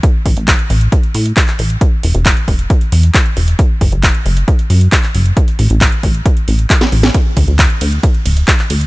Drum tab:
RD |----------------|----------------|----------------|----------------|
HH |x-oxxxoxxxoxxxox|x-oxxxoxxxoxxxox|x-oxxxoxxxoxxxox|xxoxxxoxxxoxxxox|
CP |----x-------xx--|----x-------x---|----x-------xx--|----x-------x---|
SD |----------------|----------------|----------------|-------------o-o|
BD |o-o-o---o---o---|o---o-o-o---o---|o-o-o---o---o---|o---o-o-o---o---|

RD |x-x-x-x-x-x-x-x-|
HH |x-oxxxoxxxoxxxox|
CP |----x-------xx--|
SD |----------------|
BD |o-o-o---o---o---|